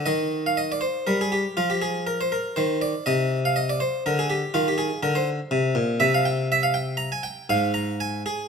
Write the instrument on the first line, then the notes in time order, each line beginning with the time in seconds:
harpsichord
0.06 D#3 D#5
0.46 F5
0.57 D#5
0.72 D5
0.81 C5
1.07 G3 A#4
1.21 G#4
1.32 G4
1.57 F3 F4
1.70 G4
1.82 G#4
2.07 A#4
2.21 C5
2.32 A#4
2.56 D#3 C5
2.82 D5
3.06 C3 D#5
3.45 F5
3.56 D#5
3.70 D5
3.80 C5
4.06 D3 A#4
4.19 G#4
4.30 G4
4.54 D#3 F4
4.68 G4
4.78 G#4
5.03 D3 A#4
5.15 C5
5.51 C3
5.75 A#2
6.00 C3 E5
6.14 F5
6.25 G5
6.52 E5
6.63 F5
6.74 G5
6.97 A#5
7.12 G#5
7.23 G5
7.49 G#2 F5
7.74 A#5
8.00 G#5
8.26 G#4